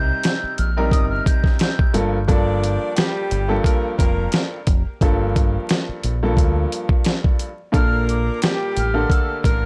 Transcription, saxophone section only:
2.28 2.93 D4 loud
2.28 2.93 D5 loud
2.96 3.61 G3 loud
2.96 3.61 G4 loud
3.65 3.92 A#3 medium
3.65 3.92 A#4 loud
3.99 4.48 A#3 medium
3.99 4.48 A#4 medium
7.75 8.39 A#3 loud
7.75 8.39 A#4 loud
8.42 9.06 G3 loud
8.42 9.06 G4 loud
9.11 9.38 A3 medium
9.11 9.38 A4 loud
9.44 9.65 A#3 medium
9.44 9.65 A#4 loud

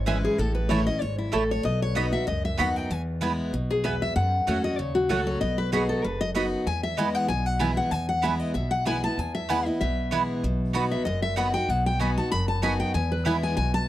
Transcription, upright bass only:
0.00 0.25 G#1 medium
0.39 0.88 A1 loud
1.02 1.29 G#1 medium
1.33 1.60 A1 medium
1.65 2.14 B1 loud
2.28 2.54 C#2 medium
2.59 2.86 D#2 medium
2.90 3.40 E2 loud
3.53 4.03 B1 medium
4.16 4.41 F#2 loud
4.48 4.74 E2 medium
4.79 5.06 D#2 medium
5.10 5.37 C#2 medium
5.42 5.91 B1 loud
6.04 6.54 F#1 medium
6.67 7.16 E2 loud
7.29 7.79 B1 loud
7.92 8.41 E2 loud
8.55 9.05 B1 medium
9.18 9.67 E2 loud
9.81 10.31 B1 medium
10.44 10.93 B1 loud
11.06 11.56 F#1 medium
11.69 12.18 B1 loud
12.32 12.81 F#1 medium
12.95 13.44 E2 loud
13.57 13.88 B1 medium

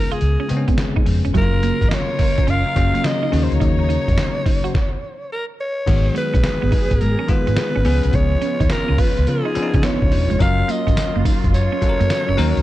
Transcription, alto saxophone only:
0.00 0.14 A#4 loud
0.12 0.69 G#4 medium
1.37 1.91 A#4 loud
1.89 1.96 D#5 medium
1.94 2.51 C#5 loud
2.50 3.08 F5 loud
3.06 3.45 D#5 loud
3.43 3.55 C5 medium
3.54 5.32 C#5 loud
5.32 5.45 A#4 medium
5.61 6.13 C#5 medium
6.18 7.03 B4 loud
7.01 7.32 A#4 medium
7.30 8.17 B4 loud
8.16 8.73 C#5 loud
8.72 9.01 A#4 loud
9.00 9.31 B4 loud
9.29 9.87 G#4 loud
9.85 10.43 C#5 loud
10.42 10.73 F5 loud
10.71 11.26 D#5 loud
11.54 12.62 C#5 loud

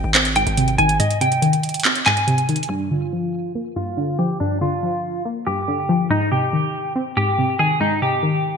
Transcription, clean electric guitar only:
0.00 0.11 G5 medium
0.36 0.76 G5 medium
0.78 0.97 G#5 medium
1.00 1.18 D#5 medium
1.21 1.81 G5 medium
2.06 2.66 G#5 medium
2.70 2.88 D4 loud
2.91 3.51 F4 medium
3.76 4.16 F4 medium
4.19 4.37 G4 medium
4.40 4.58 D4 medium
4.61 5.21 F4 medium
5.47 6.07 G4 medium
6.11 6.29 D#4 loud
6.32 6.92 G4 medium
7.17 7.57 G4 medium
7.59 7.78 G#4 medium
7.81 7.99 D#4 medium
8.02 8.57 G4 medium

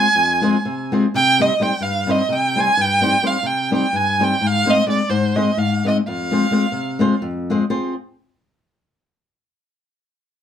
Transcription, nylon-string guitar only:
0.15 0.53 F2 medium
0.42 0.55 G#3 medium
0.42 0.55 C4 medium
0.42 0.55 F4 medium
0.42 0.56 G#4 medium
0.42 0.56 C5 medium
0.65 1.03 C3 medium
0.92 1.05 G#3 medium
0.92 1.05 C4 medium
0.92 1.05 F4 medium
0.92 1.05 G#4 medium
0.92 1.06 C5 medium
1.14 1.49 C3 medium
1.39 1.51 G3 medium
1.39 1.52 C4 medium
1.39 1.52 D#4 medium
1.39 1.52 G4 medium
1.39 1.52 C5 medium
1.60 1.72 G3 medium
1.60 1.72 C4 soft
1.60 1.72 D#4 medium
1.60 1.72 G4 medium
1.60 1.72 C5 medium
1.81 2.18 G2 medium
2.06 2.20 G3 medium
2.06 2.20 C4 medium
2.06 2.21 D#4 medium
2.06 2.21 G4 medium
2.06 2.21 C5 medium
2.29 2.67 C3 medium
2.56 2.69 G3 medium
2.56 2.70 C4 soft
2.56 2.70 D#4 medium
2.56 2.70 G4 medium
2.56 2.70 C5 medium
2.77 3.12 G2 medium
3.01 3.15 G3 medium
3.01 3.15 C4 medium
3.01 3.15 D#4 medium
3.01 3.15 G4 medium
3.01 3.15 C5 medium
3.22 3.36 G3 medium
3.22 3.36 C4 medium
3.22 3.36 D#4 medium
3.22 3.36 G4 medium
3.22 3.36 C5 medium
3.43 3.82 C3 medium
3.71 3.85 G3 medium
3.71 3.85 C4 medium
3.71 3.85 D#4 medium
3.71 3.85 G4 medium
3.71 3.85 C5 medium
3.93 4.31 G2 medium
4.19 4.34 G3 medium
4.19 4.34 C4 medium
4.19 4.34 D#4 medium
4.19 4.34 G4 medium
4.19 4.35 C5 medium
4.41 4.77 G#2 medium
4.65 4.79 G#3 medium
4.65 4.80 C4 medium
4.65 4.80 D#4 medium
4.65 4.80 G#4 medium
4.65 4.80 C5 medium
4.87 5.00 G#3 medium
4.87 5.00 C4 medium
4.87 5.00 D#4 medium
4.87 5.01 G#4 medium
4.87 5.01 C5 medium
5.09 5.47 G#2 medium
5.36 5.49 G#3 medium
5.36 5.50 C4 medium
5.36 5.50 D#4 medium
5.36 5.50 G#4 medium
5.36 5.50 C5 medium
5.57 5.96 G#2 medium
5.85 5.98 G#3 medium
5.85 5.99 C4 medium
5.85 5.99 D#4 medium
5.85 5.99 G#4 medium
5.85 5.99 C5 medium
6.08 6.42 F2 medium
6.31 6.44 G#3 medium
6.31 6.44 C4 medium
6.31 6.44 F4 medium
6.31 6.45 G#4 medium
6.31 6.45 C5 medium
6.51 6.64 G#3 medium
6.51 6.64 C4 medium
6.51 6.65 F4 medium
6.51 6.65 G#4 soft
6.51 6.65 C5 medium
6.72 7.10 C3 medium
6.99 7.13 G#3 medium
6.99 7.13 C4 medium
6.99 7.13 F4 medium
6.99 7.14 G#4 medium
6.99 7.14 C5 loud
7.22 7.60 F2 medium
7.50 7.63 G#3 medium
7.50 7.63 C4 medium
7.50 7.63 F4 medium
7.50 7.63 G#4 medium
7.50 7.64 C5 medium
7.70 7.94 C4 medium
7.70 7.94 F4 medium
7.70 7.94 G#4 medium
7.70 7.94 C5 medium

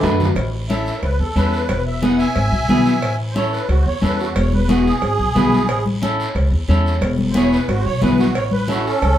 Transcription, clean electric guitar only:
0.03 0.26 D4 medium
0.03 0.26 F#4 medium
0.03 0.27 B4 medium
0.69 0.93 C#4 medium
0.69 0.93 E4 medium
0.69 0.93 A4 medium
1.36 1.59 C#4 medium
1.36 1.60 E4 medium
1.36 1.60 A4 medium
2.02 2.26 B3 medium
2.02 2.26 E4 medium
2.02 2.26 G#4 medium
2.69 2.93 B3 medium
2.69 2.93 E4 medium
2.69 2.93 G#4 medium
3.35 3.59 C#4 medium
3.35 3.59 E4 medium
3.35 3.60 A4 medium
4.02 4.26 C#4 medium
4.02 4.26 E4 medium
4.02 4.26 A4 medium
4.68 4.92 B3 medium
4.68 4.92 E4 medium
4.68 4.92 G#4 medium
5.35 5.59 B3 medium
5.35 5.59 E4 medium
5.35 5.59 B4 medium
6.02 6.25 C#4 medium
6.02 6.26 E4 medium
6.02 6.26 A4 medium
6.69 6.92 C#4 medium
6.69 6.92 E4 medium
6.69 6.93 A4 medium
7.35 7.59 B3 medium
7.35 7.59 E4 medium
7.35 7.59 G#4 medium
8.02 8.25 B3 medium
8.02 8.25 E4 medium
8.02 8.26 G#4 medium
8.68 8.92 C#4 medium
8.68 8.92 E4 medium
8.68 8.92 A4 medium

